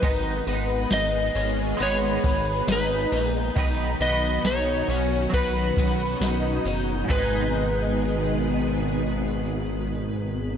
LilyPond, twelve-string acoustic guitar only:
\new Staff \with { instrumentName = "Twelve-string acoustic guitar" } { \time 4/4 \key gis \minor \tempo 4 = 68 dis'8 b8 dis'8 cis'8 b8 b8 dis'8 dis'8 | dis'8 b8 dis'8 cis'8 b8 b8 dis'8 dis'8 | <gis b dis' gis'>1 | }